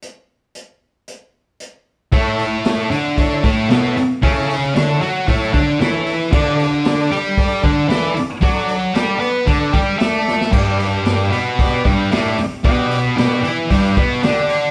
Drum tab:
CC |----------------|----------------|----------------|x---------------|
HH |x---x---x---x---|o-o-o-o-o-o-o-o-|o-o-o-o-o-o-o-o-|--o-o-o-o-o-o-o-|
SD |----------------|----o-------o---|----o-------o---|----o-------o---|
BD |----------------|o-------o-o-----|o-------o-o-----|o-------o-o-----|

CC |----------------|x---------------|----------------|
HH |o-o-o-o-o-o-o---|o-o-o-o-o-o-o-o-|o-o-o-o-o-o-o-o-|
SD |----o-------o-oo|----o-------o---|----o-------o---|
BD |o-------o-o-----|o-------o-o-----|o-------o-o-----|